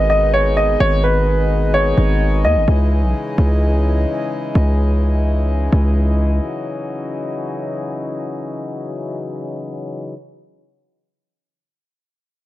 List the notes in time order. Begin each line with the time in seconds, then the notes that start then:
Already playing: G#1 B2 D#3 G#3 D#4
0.10 D#5
0.34 C#5
0.57 D#5
0.80 G#1 C#5
1.04 B4
1.74 C#5
1.97 G#1
2.44 D#2 D#5
2.56 G#1
2.68 C#2 C#3 E3 G#3 D#4
3.03 B1
3.38 C#2
4.55 C#2
5.72 C#2
6.43 F#3